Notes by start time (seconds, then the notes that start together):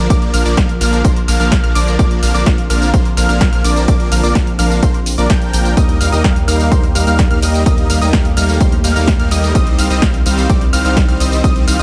Already playing: D3 F3 A#3 F4, impact
0.10 A#1 F3 A#3 D4 A#4 D5 D6, kick, closed hi-hat, tambourine
0.22 closed hi-hat
0.34 A#1 F3 A#3 D4 A#4 F5 F6, open hi-hat, tambourine
0.45 A#1 F3 A#3 D4 A#4 D5 D6, closed hi-hat, tambourine
0.57 A#1 F3 A#3 D4 A#4 F5 F6, kick, snare, closed hi-hat, tambourine
0.69 closed hi-hat
0.81 A#1 F3 A#3 D4 A#4 F5 F6, snare, open hi-hat, tambourine
0.93 closed hi-hat, tambourine
1.04 A#1 F3 A#3 D4 A#4 C5 C6, kick, closed hi-hat, tambourine
1.16 closed hi-hat
1.28 A#1 F3 A#3 D4 A#4 F5 F6, open hi-hat, tambourine
1.40 A#1 F3 A#3 D4 A#4 F5 F6, closed hi-hat, tambourine
1.52 kick, snare, closed hi-hat, tambourine
1.64 A#1 F3 A#3 D4 A#4 F5 F6, closed hi-hat
1.75 A#1 F3 A#3 D4 A#4 D5 D6, open hi-hat, tambourine
1.87 closed hi-hat, tambourine
1.99 A#1 F3 A#3 C4 D4 A#4 D5 D6, kick, closed hi-hat, tambourine
2.11 closed hi-hat
2.23 A#1 F3 A#3 D4 A#4 F5 F6, open hi-hat, tambourine
2.34 A#1 F3 A#3 D4 A#4 D5 D6, closed hi-hat, tambourine
2.46 A#1 F3 A#3 D4 A#4 F5 F6, kick, snare, closed hi-hat, tambourine
2.58 closed hi-hat
2.70 A#1 F3 A#3 D4 A#4 F5 F6, open hi-hat, tambourine
2.82 closed hi-hat, tambourine
2.94 A#1 F3 A#3 D4 A#4 C5 C6, kick, closed hi-hat, tambourine
3.05 closed hi-hat
3.17 A#1 F3 A#3 D4 A#4 F5 F6, open hi-hat, tambourine
3.29 A#1 F3 A#3 D4 A#4 F5 F6, closed hi-hat, tambourine
3.41 kick, snare, closed hi-hat, tambourine
3.53 A#1 F3 A#3 D4 A#4 F5 F6, closed hi-hat
3.64 A#1 F3 A#3 D4 A#4 D5 D6, open hi-hat, tambourine
3.76 closed hi-hat, tambourine
3.88 A#1 F3 A#3 D4 A#4 D5 D6, kick, closed hi-hat, tambourine
4.00 closed hi-hat
4.12 A#1 F3 A#3 D4 A#4 F5 F6, open hi-hat, tambourine
4.23 A#1 F3 A#3 D4 A#4 D5 D6, closed hi-hat, tambourine
4.35 A#1 F3 A#3 D4 A#4 F5 F6, kick, snare, closed hi-hat, tambourine
4.47 closed hi-hat
4.59 A#1 F3 A#3 D4 A#4 F5 F6, snare, open hi-hat, tambourine
4.71 closed hi-hat, tambourine
4.82 A#1 F3 A#3 D4 A#4 C5 C6, kick, closed hi-hat, tambourine
4.94 closed hi-hat
5.06 open hi-hat, tambourine
5.18 A#1 F3 A#3 D4 A#4 D5 D6, closed hi-hat, tambourine
5.30 A#1 F3 A#3 D4 A#4 G5 G6, kick, snare, closed hi-hat, tambourine
5.42 closed hi-hat
5.53 A#1 F3 A#3 D4 A#4 G5 G6, open hi-hat, tambourine
5.65 closed hi-hat, tambourine
5.77 D#2 D#3 G3 A#3 D#4 G4 A#4 D#5 D#6, kick, closed hi-hat, tambourine
5.89 closed hi-hat
6.01 D#2 G3 A#3 D#4 A#4 F5 F6, open hi-hat, tambourine
6.12 D#2 G3 A#3 D#4 A#4 D#5 D#6, closed hi-hat, tambourine
6.24 D#2 G3 A#3 D#4 A#4 F5 F6, kick, snare, closed hi-hat, tambourine
6.36 closed hi-hat
6.48 D#2 G3 A#3 D#4 A#4 F5 F6, open hi-hat, tambourine
6.60 closed hi-hat, tambourine
6.72 D#2 G3 A#3 D#4 A#4 C5 C6, kick, closed hi-hat, tambourine
6.84 closed hi-hat
6.95 D#2 G3 A#3 D#4 A#4 F5 F6, open hi-hat, tambourine
7.07 D#2 G3 A#3 D#4 A#4 F5 F6, closed hi-hat, tambourine
7.19 kick, snare, closed hi-hat, tambourine
7.31 D#2 G3 A#3 D#4 A#4 F5 F6, closed hi-hat
7.42 D#2 G3 A#3 D#4 A#4 D#5 D#6, open hi-hat, tambourine
7.54 closed hi-hat, tambourine
7.66 D#2 G3 A3 A#3 D#4 A#4 D#5 D#6, kick, closed hi-hat, tambourine
7.78 closed hi-hat
7.90 D#2 G3 A#3 D#4 A#4 F5 F6, open hi-hat, tambourine
8.01 D#2 G3 A#3 D#4 A#4 D#5 D#6, closed hi-hat, tambourine
8.13 D#2 G3 A#3 D#4 A#4 F5 F6, kick, snare, closed hi-hat, tambourine
8.25 closed hi-hat
8.37 D#2 G3 A#3 D#4 A#4 F5 F6, snare, open hi-hat, tambourine
8.49 closed hi-hat, tambourine
8.60 D#2 G3 A#3 D#4 A#4 C5 C6, kick, closed hi-hat, tambourine
8.72 closed hi-hat
8.84 D#2 G3 A#3 D#4 A#4 F5 F6, open hi-hat, tambourine
8.96 D#2 G3 A#3 D#4 A#4 F5 F6, closed hi-hat, tambourine
9.07 kick, snare, closed hi-hat, tambourine
9.20 D#2 G3 A#3 D#4 A#4 F5 F6, closed hi-hat
9.31 D#2 G3 A#3 D#4 A#4 D#5 D#6, open hi-hat, tambourine
9.43 closed hi-hat, tambourine
9.55 C2 D#3 G3 C4 D#4 C5 D#5 D#6, kick, closed hi-hat, tambourine
9.67 closed hi-hat
9.78 C2 G3 C4 D#4 C5 F5 F6, open hi-hat, tambourine
9.90 C2 G3 C4 D#4 C5 D#5 D#6, closed hi-hat, tambourine
10.02 C2 G3 C4 D#4 C5 F5 F6, kick, snare, closed hi-hat, tambourine
10.14 closed hi-hat
10.26 C2 G3 C4 D#4 C5 F5 F6, open hi-hat, tambourine
10.38 closed hi-hat, tambourine
10.49 C2 G3 C4 D#4 C5 D5 D6, kick, closed hi-hat, tambourine
10.61 closed hi-hat
10.73 C2 G3 C4 D#4 C5 F5 F6, open hi-hat, tambourine
10.85 C2 G3 C4 D#4 C5 F5 F6, closed hi-hat, tambourine
10.97 kick, snare, closed hi-hat, tambourine
11.08 C2 G3 C4 D#4 C5 F5 F6, closed hi-hat
11.20 C2 G3 C4 D#4 C5 D#5 D#6, open hi-hat, tambourine
11.32 closed hi-hat, tambourine
11.44 C2 G3 C4 D#4 F4 C5 D#5 D#6, kick, closed hi-hat, tambourine
11.56 closed hi-hat
11.67 C2 G3 C4 D#4 C5 F5 F6, open hi-hat, tambourine
11.79 C2 G3 C4 D#4 C5 D#5 D#6, closed hi-hat